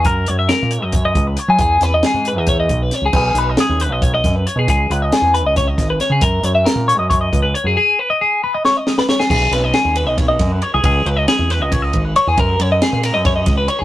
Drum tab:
CC |--------------|--------------|x-------------|--------------|
RD |--------------|--------------|--------------|--------------|
HH |x-x-x-x-x-x-x-|x-x-x-x-x-x-x-|--x-x-x-x-x-x-|x-x-x-x-x-x-x-|
SD |----o---------|--o-o-------o-|----o-----o---|----o---o-o-o-|
BD |o-------o-o---|o-------o-o---|o-------o-o---|o-------o-o---|

CC |--------------|--------------|x-------------|--------------|
RD |--------------|--------------|--x-x-x-x-x-x-|x-x-x-x-x-x-x-|
HH |x-x-x-x-x-x-x-|--------------|--------------|--------------|
SD |----o---------|--------o-oooo|--o-o---o-o---|----o-o-------|
BD |o-------o-o---|--------------|o-------o-o---|o-------o-o---|

CC |--------------|
RD |x-x-x-x-x-x-x-|
HH |--------------|
SD |----o-o-o-o---|
BD |o-------o-o---|